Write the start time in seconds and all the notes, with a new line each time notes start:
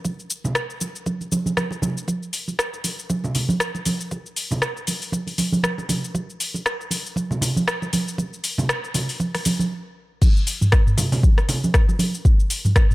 0.05 kick, muted conga, high conga, shaker
0.19 shaker
0.30 shaker
0.44 muted conga, low conga, shaker
0.55 kick, cross-stick, shaker
0.70 shaker
0.81 muted conga, shaker
0.96 shaker
1.06 kick, high conga, shaker
1.21 muted conga, shaker
1.32 high conga, shaker
1.46 high conga, shaker
1.57 kick, cross-stick, high conga, shaker
1.71 kick, muted conga, shaker
1.82 high conga, low conga, shaker
1.97 shaker
2.08 kick, muted conga, high conga, shaker
2.23 shaker
2.33 open hi-hat, shaker
2.48 mid tom, muted conga, shaker
2.59 kick, cross-stick, shaker
2.73 mid tom, shaker
2.84 open hi-hat, muted conga, shaker
2.99 shaker
3.10 kick, high conga, shaker
3.24 muted conga, low conga, shaker
3.35 open hi-hat, low conga, shaker
3.49 high conga, shaker
3.60 kick, cross-stick, shaker
3.75 muted conga, shaker
3.85 open hi-hat, high conga, shaker
4.01 shaker
4.11 kick, muted conga, high conga, shaker
4.26 shaker
4.36 open hi-hat, shaker
4.51 mid tom, muted conga, low conga, shaker
4.62 kick, cross-stick, shaker
4.77 mid tom, shaker
4.87 open hi-hat, muted conga, shaker
5.02 open hi-hat, shaker
5.12 kick, high conga, shaker
5.27 open hi-hat, muted conga, shaker
5.38 open hi-hat, high conga, shaker
5.52 high conga, shaker
5.63 kick, cross-stick, high conga, shaker
5.78 kick, muted conga, shaker
5.89 open hi-hat, high conga, low conga, shaker
6.04 shaker
6.14 kick, muted conga, high conga, shaker
6.30 shaker
6.40 open hi-hat, shaker
6.54 mid tom, muted conga, shaker
6.66 kick, cross-stick, shaker
6.81 mid tom, shaker
6.91 open hi-hat, muted conga, shaker
7.06 shaker
7.16 kick, high conga, shaker
7.31 muted conga, low conga, shaker
7.41 open hi-hat, low conga, shaker
7.56 high conga, shaker
7.67 kick, cross-stick, shaker
7.82 muted conga, shaker
7.93 open hi-hat, high conga, shaker
8.08 shaker
8.18 kick, muted conga, high conga, shaker
8.33 shaker
8.44 open hi-hat, shaker
8.58 mid tom, muted conga, low conga, shaker
8.69 kick, cross-stick, shaker
8.84 mid tom, shaker
8.94 open hi-hat, muted conga, low conga, shaker
9.09 open hi-hat, shaker
9.20 kick, high conga, shaker
9.35 cross-stick, open hi-hat, muted conga, shaker
9.45 open hi-hat, high conga, shaker
9.59 high conga, shaker
10.21 kick, crash, muted conga, high conga, shaker
10.37 shaker
10.47 open hi-hat, shaker
10.61 mid tom, muted conga, shaker
10.72 kick, cross-stick, shaker
10.87 mid tom, shaker
10.97 open hi-hat, muted conga, low conga, shaker
11.12 open hi-hat, low conga, shaker
11.23 kick, high conga, shaker
11.38 cross-stick, muted conga, shaker
11.49 open hi-hat, low conga, shaker
11.64 high conga, shaker
11.74 kick, cross-stick, shaker
11.89 muted conga, shaker
11.99 open hi-hat, high conga, shaker
12.14 shaker
12.25 kick, muted conga, high conga, shaker
12.40 shaker
12.50 open hi-hat, shaker
12.65 mid tom, muted conga, shaker
12.76 kick, cross-stick, shaker
12.91 mid tom, shaker